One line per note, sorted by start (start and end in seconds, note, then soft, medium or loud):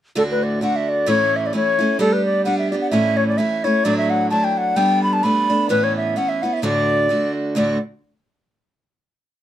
0.15 0.61 D2 medium
0.15 0.62 A2 medium
0.15 0.60 D3 medium
0.15 0.61 A3 medium
0.15 0.62 D4 medium
0.15 0.62 F#4 medium
0.15 0.23 A4 medium
0.31 0.45 B4 medium
0.43 0.62 D5 medium
0.61 1.07 D3 soft
0.61 1.06 A3 soft
0.61 1.07 D4 medium
0.61 1.08 F#4 medium
0.61 0.77 F#5 medium
0.76 0.90 E5 medium
0.89 1.10 D5 medium
1.06 1.53 A2 medium
1.06 1.52 E3 medium
1.06 1.53 A3 medium
1.06 1.54 C#4 medium
1.06 1.54 E4 medium
1.06 1.38 C#5 loud
1.36 1.48 E5 medium
1.46 1.55 D5 medium
1.53 1.79 E3 medium
1.53 1.80 A3 medium
1.53 1.79 C#4 soft
1.53 1.77 E4 soft
1.53 1.98 C#5 medium
1.79 1.99 A3 soft
1.79 2.00 C#4 soft
1.79 1.99 E4 medium
1.99 2.44 G3 medium
1.99 2.44 B3 medium
1.99 2.45 D4 medium
1.99 2.46 G4 medium
1.99 2.14 A4 medium
2.13 2.25 B4 medium
2.25 2.44 D5 medium
2.45 2.72 G3 soft
2.45 2.72 B3 medium
2.45 2.72 D4 medium
2.45 2.71 G4 medium
2.45 2.58 F#5 medium
2.58 2.70 E5 medium
2.71 2.92 B3 soft
2.71 2.92 D4 soft
2.71 2.92 G4 soft
2.71 2.76 D5 medium
2.81 2.90 F#5 medium
2.90 3.38 A2 medium
2.90 3.37 E3 medium
2.90 3.38 A3 medium
2.90 3.38 C#4 medium
2.90 3.39 E4 medium
2.90 3.18 E5 medium
3.17 3.28 C#5 medium
3.28 3.39 D5 medium
3.38 3.64 E3 medium
3.38 3.65 A3 soft
3.38 3.64 C#4 soft
3.38 3.63 E4 medium
3.38 3.66 E5 medium
3.64 3.85 A3 soft
3.64 3.85 C#4 soft
3.64 3.84 E4 soft
3.64 3.86 C#5 medium
3.84 4.31 D2 medium
3.84 4.31 A2 medium
3.84 4.29 F#3 medium
3.84 4.30 A3 medium
3.84 4.31 D4 medium
3.84 4.31 E4 medium
3.84 3.97 D5 loud
3.98 4.12 E5 medium
4.10 4.30 F#5 medium
4.30 4.76 F#3 soft
4.30 4.76 A3 soft
4.30 4.76 D4 soft
4.30 4.77 E4 medium
4.30 4.46 A5 medium
4.44 4.59 G5 medium
4.57 4.78 F#5 medium
4.76 5.22 G3 medium
4.76 5.23 A3 medium
4.76 5.24 B3 medium
4.76 5.24 D4 medium
4.76 5.03 G5 loud
5.03 5.15 B5 medium
5.13 5.25 A5 medium
5.23 5.50 G3 soft
5.23 5.50 A3 soft
5.23 5.49 B3 soft
5.23 5.48 D4 medium
5.23 5.69 B5 loud
5.50 5.70 A3 soft
5.50 5.69 B3 soft
5.50 5.70 D4 soft
5.69 6.16 A2 medium
5.69 6.15 E3 medium
5.69 6.15 B3 medium
5.69 6.16 C#4 medium
5.69 6.17 E4 medium
5.69 5.85 B4 loud
5.84 5.96 C#5 medium
5.97 6.19 E5 medium
6.16 6.43 E3 soft
6.16 6.43 B3 soft
6.16 6.43 C#4 medium
6.16 6.42 E4 medium
6.16 6.30 F#5 medium
6.29 6.44 E5 medium
6.42 6.63 B3 soft
6.42 6.63 C#4 soft
6.42 6.63 E4 soft
6.42 6.55 F#5 medium
6.53 6.63 E5 medium
6.62 7.09 D2 medium
6.62 7.09 A2 medium
6.62 7.09 D3 medium
6.62 7.10 A3 medium
6.62 7.10 D4 medium
6.62 7.11 F#4 medium
6.62 7.32 D5 loud
7.09 7.56 D3 medium
7.09 7.56 A3 medium
7.09 7.57 D4 soft
7.09 7.57 F#4 medium
7.55 7.76 D2 medium
7.55 7.77 A2 medium
7.55 7.77 D3 medium
7.55 7.77 A3 medium
7.55 7.77 D4 medium
7.55 7.78 F#4 medium
7.55 7.80 D5 medium